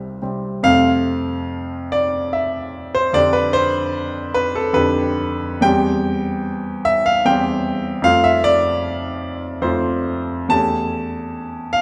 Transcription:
Already playing: C2 C3 G3 C4 E5 F5
0.22 C3 G3 C4
0.63 F2 C3 A3 C4 F5
1.92 D5
2.33 E5
2.95 C5
3.13 F2 D3 D4 G4 D5
3.33 B4
3.53 C5
4.34 B4
4.55 A4
4.73 F2 D3 D4 G4 B4
5.61 E2 G3 C4 G4 G5
6.85 E5
7.06 F5
7.25 E2 G3 C4 G4 G5
8.02 F2 A3 C4 F4 F5
8.24 E5
8.44 D5
9.62 F2 A3 C4 F4 C5
10.49 E2 A3 C#4 G4 A5
11.73 F5

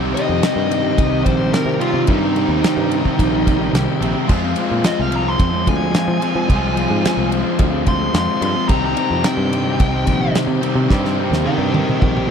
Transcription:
Already playing: C2 C3 D#3 G3 C4 D#4 G4 C5
0.00 G3 C4 G4
0.14 D#3 G3 C4 G4 D#5, ride
0.29 F2
0.43 C3 D#3 G3 C4 G4, snare, ride
0.56 G2
0.68 D#3 G3 C4 G4, ride
0.82 G3 C4 G4
0.98 C2, kick, ride
1.09 C4 G4
1.14 G3
1.24 A#1 D#3 G3 C4 G4 C5, kick, ride
1.37 G3 C4 G4
1.51 C3 D#3 G3 C4 G4 A#4, snare, ride
1.66 C3
1.78 D#3 G3 C4 F4 G4, ride
1.82 C3 D#3
1.94 C3 C4 G4
1.98 G3
2.06 G2 C3 D#3 G3 C4 D#4 G4 C5, kick, ride
2.21 G3 C4 G4
2.34 D#3 G3 C4 G4, ride
2.48 D#2
2.62 C3 D#3 G3 C4 G4, snare, ride
2.77 G2
2.89 D#3 G3 C4 G4, ride
3.03 G3 C4 G4, kick
3.19 A#1, kick, ride
3.31 G3 C4 G4
3.44 D#3 G3 C4 G4, kick, ride
3.58 G3 C4 G4
3.72 C2 C3 D#3 G3 C4, snare, ride
3.76 G4
3.98 A#1 D#3 G3 C4 G4, ride
4.03 C3 D#3
4.14 G3 C4 G4
4.27 F2 F3 G#3 C4 F4 C5, kick, crash
4.31 F4
4.43 G#3 C4 F4
4.56 F3 G#3 C4, ride
4.61 F4
4.71 A#2
4.83 F3 G#3 C4 F4 D#5, snare, ride
4.99 C2 F5
5.11 F3 G#3 C4 F4, ride
5.16 A#5
5.24 G#3 C4 F4
5.28 C6
5.39 F2, kick, ride
5.50 G#3 C4 F4
5.64 D2 F3 G#3 C4 F4, kick, ride
5.69 G#5
5.78 G#3 C4 F4
5.92 F3 G#3 C4 F4, snare, ride
6.08 F3
6.21 F3 G#3 C4 F4, ride
6.34 F3 G#3 C4 F4
6.48 C2 F3 G#3 C4 F4 C5, kick, ride
6.53 F4
6.62 G#3 C4 F4
6.75 F3 G#3 C4 F4, ride
6.90 G#2
7.03 F3 G#3 C4, snare, ride
7.07 F4
7.17 C2
7.29 F3 G#3 C4 F4, ride
7.43 G#3 C4 F4
7.59 D2, kick, ride
7.70 G#3 C4 F4
7.84 F3 G#3 C4, kick, ride
7.88 F4 C6
7.98 G#3 C4 F4
8.12 F2 F3 G#3 C4 F4, snare, ride
8.16 C6
8.40 G2 F3 G#3 C4 F4 C6, ride
8.53 G#3 C4 F4
8.67 C2 C3 D#3 G3 C4 D#4 G4 C5 A#5, kick, ride
8.81 G3 C4 G4
8.85 A#5
8.95 D#3 G3 C4, ride
9.00 G4
9.11 F2
9.23 C3 D#3 G3 C4 G4 G5, snare, ride
9.37 G2
9.50 D#3 G3 C4, ride
9.54 G4
9.63 G3 C4 G4
9.80 C2, kick, ride
9.92 G3 C4 G4
10.05 A#1 D#3 G3 C4 G4, kick, ride
10.19 C4 G4
10.23 G3
10.33 C3 D#3 G3 C4, snare, ride
10.37 G4
10.47 C3
10.61 C3 D#3 G3 C4 G4, ride
10.74 C3 G3 C4 G4
10.89 G2 C3 D#3 G3 C4 D#4 C5, kick, snare
10.93 G4
11.04 G3 C4 G4, snare
11.18 D#3 G3 C4 G4
11.31 D#2, snare
11.45 C3 D#3 G3 C4 G4 A#4 G5, high tom
11.58 G2
11.73 D#3 G3 C4 G4 A#4 G5, high tom
11.87 G3 C4 G4, mid tom
12.01 A#1 A#4 G5, kick
12.15 G3 C4 G4, mid tom
12.27 A#2

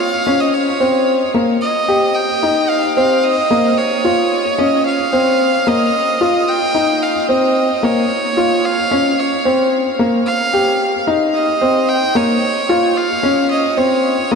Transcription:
0.00 F5
0.27 C#4
0.40 D#5
0.53 C#5
0.80 C4
1.34 A#3
1.61 D#5
1.88 G4
2.15 G5
2.43 D#4
2.69 F5
2.97 C4 F5
3.23 D#5
3.51 A#3
3.77 C#5
4.04 F4
4.58 C#4 D#5
4.86 F5
5.13 C4
5.67 A#3 D#5
6.21 F4
6.48 G5
6.75 D#4
7.02 F5
7.29 C4 D#5
7.83 A#3 C#5
8.37 F4
8.65 F5
8.91 C#4
9.19 C#5
9.45 C4
9.99 A#3
10.26 F5
10.53 G4
11.07 D#4
11.34 D#5
11.61 C4
11.89 G5
12.15 A#3 C#5
12.69 F4
12.97 F5
13.23 C#4
13.51 D#5
13.77 C4 C#5
14.31 A#3 D#5

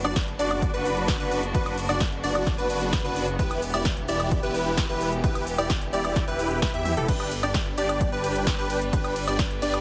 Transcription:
Already playing: B3 D4 F#4
0.04 F#1 D4 F#4 D5, closed hi-hat, high woodblock, shaker
0.16 kick, snare, closed hi-hat, shaker
0.28 closed hi-hat, shaker
0.39 F#1 D4 F#4 D5, open hi-hat, shaker
0.51 closed hi-hat, high woodblock, shaker
0.62 kick, closed hi-hat, shaker
0.74 F#1 D4 F#4 B4, closed hi-hat, shaker
0.85 open hi-hat, shaker
0.97 closed hi-hat, shaker
1.08 kick, snare, closed hi-hat, shaker
1.20 F#1 D4 F#4 B4, closed hi-hat, shaker
1.31 open hi-hat, shaker
1.43 closed hi-hat, shaker
1.54 F#1 D4 F#4 B4, kick, closed hi-hat, shaker
1.66 closed hi-hat, high woodblock, shaker
1.78 open hi-hat, shaker
1.89 F#1 D4 F#4 D5, closed hi-hat, high woodblock, shaker
2.00 kick, snare, closed hi-hat, shaker
2.12 closed hi-hat, shaker
2.24 F#1 D4 F#4 D5, open hi-hat, shaker
2.35 closed hi-hat, high woodblock, shaker
2.47 kick, snare, closed hi-hat, shaker
2.58 F#1 D4 F#4 B4, closed hi-hat, shaker
2.70 open hi-hat, shaker
2.81 closed hi-hat, shaker
2.93 kick, snare, closed hi-hat, shaker
3.04 F#1 D4 F#4 B4, closed hi-hat, shaker
3.16 open hi-hat, shaker
3.28 closed hi-hat, shaker
3.39 E1 E3 E4 G4 B4, kick, closed hi-hat, shaker
3.51 closed hi-hat, high woodblock, shaker
3.62 open hi-hat, shaker
3.74 E1 E4 G4 D5, closed hi-hat, high woodblock, shaker
3.85 kick, snare, closed hi-hat, shaker
3.97 closed hi-hat, shaker
4.08 E1 E4 G4 D5, open hi-hat, shaker
4.20 closed hi-hat, high woodblock, shaker
4.31 kick, closed hi-hat, shaker
4.43 E1 E4 G4 B4, closed hi-hat, shaker
4.55 open hi-hat, shaker
4.66 closed hi-hat, shaker
4.77 kick, snare, closed hi-hat, shaker
4.89 E1 E4 G4 B4, closed hi-hat, shaker
5.01 open hi-hat, shaker
5.12 closed hi-hat, shaker
5.24 E1 E4 G4 B4, kick, closed hi-hat, shaker
5.35 closed hi-hat, high woodblock, shaker
5.47 open hi-hat, shaker
5.58 E1 E4 G4 D5, closed hi-hat, high woodblock, shaker
5.70 kick, snare, closed hi-hat, shaker
5.81 closed hi-hat, shaker
5.93 E1 E4 G4 D5, open hi-hat, shaker
6.05 closed hi-hat, high woodblock, shaker
6.16 kick, snare, closed hi-hat, shaker
6.28 E1 E4 G4 B4, closed hi-hat, shaker
6.39 open hi-hat, shaker
6.51 closed hi-hat, shaker
6.62 E1 E4 G4 B4, kick, snare, closed hi-hat, shaker
6.74 E2 E4 G4 E5, closed hi-hat, shaker
6.85 open hi-hat, high tom, shaker
6.97 E1 E4 G4 A4, closed hi-hat, mid tom, shaker
7.08 G1 G3 D4 G4 B4, kick, closed hi-hat, crash, shaker
7.20 closed hi-hat, high woodblock, shaker
7.32 open hi-hat, ride, shaker
7.43 G1 D4 G4 D5, closed hi-hat, high woodblock, shaker
7.54 kick, snare, closed hi-hat, shaker
7.66 closed hi-hat, shaker
7.77 G1 D4 G4 D5, open hi-hat, ride, shaker
7.89 closed hi-hat, high woodblock, shaker
8.01 kick, closed hi-hat, shaker
8.12 G1 D4 G4 B4, shaker
8.24 open hi-hat, ride, shaker
8.36 closed hi-hat, shaker
8.47 kick, snare, closed hi-hat, shaker
8.58 G1 D4 G4 B4, shaker
8.70 open hi-hat, ride, shaker
8.81 closed hi-hat, shaker
8.93 G1 D4 G4 B4, kick, closed hi-hat, shaker
9.04 closed hi-hat, high woodblock, shaker
9.16 open hi-hat, ride, shaker
9.28 G1 D4 G4 D5, closed hi-hat, high woodblock, shaker
9.39 kick, snare, closed hi-hat, shaker
9.51 closed hi-hat, shaker
9.62 G1 D4 G4 D5, open hi-hat, ride, shaker
9.74 closed hi-hat, high woodblock, shaker

